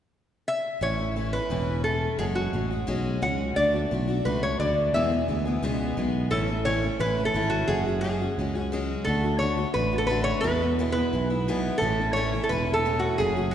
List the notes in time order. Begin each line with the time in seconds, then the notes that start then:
0.48 E5
0.81 A1 A2 E3 A3 C#4 E4 C#5
0.99 A3 C#4 E4
1.16 E3 A3 C#4 E4
1.33 A3 C#4 E4 B4
1.50 E1 A2 E3 A3 C#4 E4
1.84 E3 A3 C#4 E4 A4
2.18 F#1 F#3 G#3 C#4 F#4 G#4
2.35 G#3 C#4 F#4
2.53 A1 F#3 G#3 C#4 F#4
2.71 G#3 C#4 F#4
2.87 B1 F#3 G#3 C#4 F#4
3.22 C#2 F#3 G#3 C#4 F#4 F#5
3.56 D2 D3 A3 D4 F#4 D5
3.74 A3 D4 F#4
3.91 B1 D3 A3 D4 F#4
4.07 A3 D4 F#4
4.25 C#2 A3 D4 F#4 B4
4.43 C#5
4.59 D2 D3 A3 D4 F#4 D5
4.93 E2 B2 E3 G#3 B3 G#4 E5
5.12 E3 G#3 B3 G#4
5.28 D2 E3 G#3 B3 G#4
5.45 E3 G#3 B3 G#4
5.62 C#2 E2 B2 E3 G#3 B3 G#4
5.97 B1 E3 G#3 B3 G#4
6.30 A1 A2 E3 A3 C#4 E4 A4
6.48 A3 C#4 E4
6.65 A2 E3 A3 C#4 E4 C#5
6.82 A3 C#4 E4
6.99 A1 E3 A3 C#4 E4 B4
7.17 A3 C#4 E4
7.25 A4
7.34 G#1 E3 A3 C#4 E4
7.50 F#4
7.68 F#1 F#3 G#3 C#4 F#4 G#4
7.86 G#3 C#4 F#4
8.01 F#3 G#3 C#4 G#4
8.05 F#4
8.21 G#3 C#4 F#4
8.38 C#2 F#3 G#3 C#4 F#4
8.55 G#3 C#4 F#4
8.61 F#4
8.72 F#3 G#3 C#4 F#4
9.05 D2 D3 A3 D4 A4
9.09 F#4
9.23 A3 D4 F#4
9.39 D3 A3 D4 F#4 C#5
9.57 A3 D4 F#4
9.74 A1 D3 A3 D4 F#4 B4
9.93 A3 D4 F#4
9.98 A4
10.07 D3 A3 D4 B4
10.11 F#4
10.24 C#5
10.41 E2 B2 E3 G#3 B4
10.45 B3 E4
10.61 E3 G#3 B3 E4
10.79 E2 B2 E3 G#3 B3 E4
10.92 B3 E4 B4
10.97 E3 G#3
11.13 B1 E3 G#3 B3 E4
11.30 E3 G#3 B3 E4
11.48 E2 B2 E3 G#3 B3 E4
11.78 A1 A2 A4
11.82 E3 A3 C#4 E4
11.99 A3 C#4 E4
12.13 A2 E3 A3 C#4 C#5
12.17 E4
12.33 A3 C#4 E4
12.43 A4
12.49 E1 E3 A3 C#4 E4 B4
12.67 A3 C#4 E4
12.74 A4
12.85 A2 E3 A3 C#4 E4
12.99 F#4
13.18 F#1 F#2 C#3 F#3 A3 C#4 F#4 G#4
13.36 F#3 A3 C#4 F#4
13.51 F#4